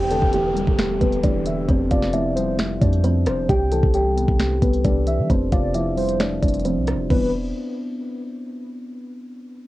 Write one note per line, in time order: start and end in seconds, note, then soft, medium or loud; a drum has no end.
0.00 0.21 E1 loud
0.00 1.01 E2 medium
0.00 0.31 G5 loud
0.00 downlifter medium
0.11 1.24 D3 medium
0.11 0.28 A4 medium
0.11 0.29 A5 medium
0.11 closed hi-hat medium
0.22 0.65 E1 loud
0.22 kick loud
0.33 1.22 E3 medium
0.33 0.76 G4 medium
0.33 0.76 G5 medium
0.33 closed hi-hat medium
0.56 0.99 G3 loud
0.56 closed hi-hat medium
0.67 1.00 E1 loud
0.67 kick medium
0.79 1.69 B3 medium
0.79 finger snap medium
0.79 snare loud
0.79 closed hi-hat medium
1.00 1.23 E1 loud
1.00 1.68 G3 medium
1.00 1.19 B3 medium
1.00 1.18 B4 medium
1.00 kick medium
1.00 closed hi-hat medium
1.12 closed hi-hat soft
1.23 1.67 E1 loud
1.23 1.69 E3 medium
1.23 1.67 D4 medium
1.23 1.66 D5 medium
1.23 kick medium
1.23 closed hi-hat medium
1.46 1.68 D3 medium
1.46 1.68 E5 medium
1.46 closed hi-hat medium
1.69 1.90 F1 loud
1.69 2.82 F2 medium
1.69 1.86 C4 medium
1.69 1.86 C5 medium
1.69 kick loud
1.69 closed hi-hat medium
1.91 2.78 F1 loud
1.91 3.04 C3 medium
1.91 2.09 F4 medium
1.91 2.34 D5 medium
1.91 2.08 F5 medium
1.91 kick loud
1.91 closed hi-hat loud
2.03 snare medium
2.13 3.03 F3 medium
2.13 2.57 E4 medium
2.13 2.56 E5 medium
2.13 closed hi-hat medium
2.36 2.80 G3 loud
2.36 2.58 C5 medium
2.36 closed hi-hat medium
2.59 3.49 C4 medium
2.59 finger snap medium
2.59 snare loud
2.59 closed hi-hat medium
2.81 3.28 F2 loud
2.81 3.49 G3 medium
2.81 2.99 D4 medium
2.81 2.99 D5 medium
2.81 kick medium
2.81 closed hi-hat medium
2.93 closed hi-hat soft
3.04 3.49 F3 medium
3.04 3.47 C4 medium
3.04 3.47 C5 medium
3.04 closed hi-hat medium
3.26 3.48 E1 loud
3.26 3.48 C3 medium
3.26 3.48 C5 medium
3.26 cross-stick loud
3.26 closed hi-hat medium
3.49 3.82 C2 loud
3.49 4.62 C3 medium
3.49 3.66 G4 medium
3.49 3.92 G5 loud
3.49 3.67 G5 medium
3.49 kick loud
3.49 closed hi-hat medium
3.72 4.85 E3 medium
3.72 3.89 A4 medium
3.72 3.89 A5 medium
3.72 closed hi-hat medium
3.83 4.26 C2 loud
3.83 kick loud
3.94 4.84 G3 medium
3.94 4.37 G4 medium
3.94 4.37 G5 medium
3.94 closed hi-hat medium
4.17 4.61 B3 loud
4.17 closed hi-hat medium
4.28 4.61 C2 loud
4.28 kick medium
4.39 5.30 C4 medium
4.39 finger snap medium
4.39 snare loud
4.39 closed hi-hat medium
4.62 4.84 C2 loud
4.62 5.30 B3 medium
4.62 4.80 B3 medium
4.62 4.79 B4 medium
4.62 kick medium
4.62 closed hi-hat medium
4.73 closed hi-hat soft
4.84 5.20 C2 loud
4.84 5.30 G3 medium
4.84 5.27 D4 medium
4.84 5.27 D5 medium
4.84 kick medium
4.84 closed hi-hat medium
5.07 5.30 E3 medium
5.07 5.29 E5 medium
5.07 closed hi-hat medium
5.18 5.29 E3 loud
5.30 5.51 F1 loud
5.30 6.42 F2 medium
5.30 5.47 C4 medium
5.30 5.47 C5 loud
5.30 kick loud
5.30 closed hi-hat medium
5.52 6.39 F1 loud
5.52 6.65 C3 medium
5.52 5.70 F4 medium
5.52 5.95 D5 medium
5.52 5.69 F5 medium
5.52 kick medium
5.52 closed hi-hat medium
5.74 6.64 F3 medium
5.74 6.18 E4 medium
5.74 6.17 E5 medium
5.74 closed hi-hat medium
5.97 6.42 G3 loud
5.97 6.19 C5 medium
5.97 closed hi-hat soft
5.97 open hi-hat medium
6.09 closed hi-hat medium
6.20 7.10 C4 medium
6.20 6.38 D4 medium
6.20 6.37 D5 medium
6.20 finger snap medium
6.20 snare loud
6.20 closed hi-hat medium
6.42 6.78 F1 loud
6.42 7.09 G3 medium
6.42 6.60 D4 medium
6.42 6.60 D5 medium
6.42 kick medium
6.42 closed hi-hat medium
6.48 closed hi-hat medium
6.54 closed hi-hat medium
6.59 closed hi-hat soft
6.65 7.10 F3 medium
6.65 6.83 C4 medium
6.65 6.82 C5 medium
6.65 closed hi-hat medium
6.76 6.95 C2 loud
6.87 7.10 C3 medium
6.87 cross-stick medium
6.87 closed hi-hat medium
6.93 7.09 F1 loud
7.10 7.52 E1 loud
7.10 7.31 D3 medium
7.10 7.31 E3 medium
7.10 7.31 G3 medium
7.10 7.31 B3 medium
7.10 7.31 B4 medium
7.10 kick loud
7.10 crash medium